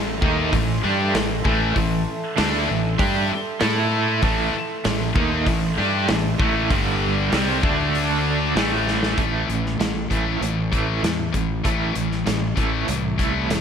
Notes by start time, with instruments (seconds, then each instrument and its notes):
Already playing: fingered electric bass A1, distorted electric guitar A2 E3, analog synth pad A4 E5 C6
0.22 fingered electric bass D#2, distorted electric guitar D#3 A#3 D#4, kick
0.53 fingered electric bass A1, distorted electric guitar A2 E3, kick, open hi-hat
0.84 fingered electric bass G2, distorted electric guitar G3 D4 G4
1.14 fingered electric bass A1, distorted electric guitar A2 E3, snare, open hi-hat
1.45 fingered electric bass A1, distorted electric guitar A2 E3 A3, kick
1.76 fingered electric bass A1, distorted electric guitar A2 E3, kick, open hi-hat
2.37 fingered electric bass D2, distorted electric guitar D3 A3 D4, snare, open hi-hat
2.69 fingered electric bass A1, distorted electric guitar A2 E3
2.99 fingered electric bass G2, distorted electric guitar G3 D4 G4, kick, open hi-hat
3.29 muted overdriven electric guitar stroke, muted distorted electric guitar stroke, muted fingered electric bass stroke
3.60 fingered electric bass A2, distorted electric guitar A3 E4 A4, snare, open hi-hat
4.22 fingered electric bass A1, distorted electric guitar A2 E3 A3, kick, open hi-hat
4.54 muted overdriven electric guitar stroke, muted distorted electric guitar stroke, muted fingered electric bass stroke
4.85 fingered electric bass A1, distorted electric guitar A2 E3, snare, open hi-hat
5.16 fingered electric bass D#2, distorted electric guitar D#3 A#3 D#4, kick
5.46 fingered electric bass A1, distorted electric guitar A2 E3, kick, open hi-hat
5.78 fingered electric bass G2, distorted electric guitar G3 D4 G4
6.08 fingered electric bass A1, distorted electric guitar A2 E3, snare, open hi-hat
6.39 fingered electric bass A1, distorted electric guitar A2 E3 A3, kick
6.70 fingered electric bass G1, distorted electric guitar G2 D3 G3, analog synth pad G4 D5 D6, kick, open hi-hat
7.31 fingered electric bass C2, distorted electric guitar C3 G3 C4, analog synth pad A4 E5 C6, snare, open hi-hat
7.63 fingered electric bass D2, distorted electric guitar D3 A3 D4, analog synth pad D5 D6, kick
7.95 open hi-hat
8.56 fingered electric bass A1, distorted electric guitar A2 E3 A3, analog synth pad A4 E5 C6, snare, open hi-hat
8.87 snare
9.03 snare
9.17 fingered electric bass A1, distorted electric guitar A2 E3 A3, kick, closed hi-hat
9.48 fingered electric bass A1, distorted electric guitar A2 E3, closed hi-hat
9.66 snare
9.79 fingered electric bass A1, distorted electric guitar A2 E3, snare, closed hi-hat
10.10 fingered electric bass A1, distorted electric guitar A2 E3 A3, kick, closed hi-hat
10.41 fingered electric bass A1, distorted electric guitar A2 E3, closed hi-hat
10.72 distorted electric guitar A2 E3 A3, kick, closed hi-hat
11.03 fingered electric bass E2, distorted electric guitar A2 E3, snare, closed hi-hat
11.33 fingered electric bass A1, distorted electric guitar A2 E3, kick, closed hi-hat
11.64 fingered electric bass A1, distorted electric guitar A2 E3 A3, kick, closed hi-hat
11.95 fingered electric bass A1, distorted electric guitar A2 E3, closed hi-hat
12.11 snare
12.26 fingered electric bass A1, distorted electric guitar A2 E3, snare, closed hi-hat
12.56 fingered electric bass A1, distorted electric guitar A2 E3 A3, kick, closed hi-hat
12.87 fingered electric bass C2, distorted electric guitar A2 E3, closed hi-hat
13.18 distorted electric guitar A2 E3 A3, kick, closed hi-hat
13.50 fingered electric bass F1, distorted electric guitar A2 E3, snare, closed hi-hat